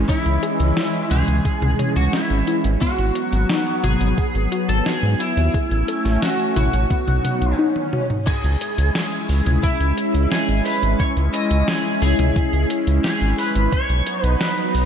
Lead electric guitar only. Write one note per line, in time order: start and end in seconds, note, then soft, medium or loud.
0.09 1.14 E4 medium
1.11 1.92 G#4 loud
1.96 2.14 F#4 medium
2.13 2.61 E4 medium
2.81 3.87 F#4 loud
3.84 4.69 G#4 loud
4.69 4.86 A4 loud
4.86 5.21 G#4 loud
5.20 6.22 E4 medium
6.22 6.55 F#4 loud
6.56 7.55 F#4 medium
8.27 8.94 G#4 medium
8.95 9.59 G#4 medium
9.64 10.28 E4 medium
10.31 10.65 G#4 loud
10.65 11.01 B4 loud
11.00 11.09 C#5 loud
11.34 11.69 D#5 loud
11.68 12.01 G#4 loud
12.02 12.66 G#4 loud
13.04 13.38 G#4 medium
13.38 13.73 B4 medium
13.72 14.25 C#5 loud
14.25 14.41 B4 loud
14.41 14.85 B4 loud